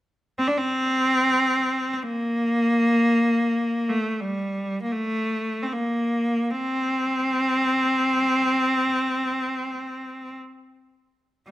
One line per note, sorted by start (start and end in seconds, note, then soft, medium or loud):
0.39 0.49 C4 medium
0.48 0.59 D4 medium
0.57 1.93 C4 medium
1.93 2.04 C4 soft
2.03 3.90 A#3 medium
3.89 4.11 A3 medium
4.11 4.22 A3 soft
4.21 4.82 G3 medium
4.82 4.93 A#3 soft
4.92 5.64 A3 medium
5.63 5.74 C4 soft
5.73 6.53 A#3 medium
6.51 10.35 C4 medium